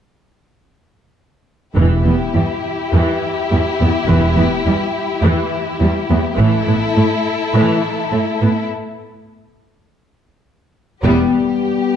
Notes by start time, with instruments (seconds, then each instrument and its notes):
1.76 double bass section E1, cello section E2, viola section E3, violin section E4 G4
2.06 cello section E2, viola section B3
2.35 cello section E2, viola section G3
2.93 cello section E2, viola section E3
3.51 cello section E2, viola section G3
3.80 cello section E2, viola section B3
4.09 double bass section E1, cello section E2, viola section E3
4.37 cello section E2, viola section B3
4.66 cello section E2, viola section G3
5.23 cello section E2, viola section E3
5.80 cello section E2, viola section G3
6.10 cello section E2, viola section B3
6.37 double bass section A1, cello section A2, viola section E3, violin section E4 A4
6.67 cello section A2, viola section B3
6.96 cello section A2, viola section A3
7.54 cello section A2, viola section E3
8.12 cello section A2, viola section A3
8.41 cello section A2, viola section B3
11.04 double bass section E1, cello section E2, violin section G3 G4, french horn section G3 B3, viola section B3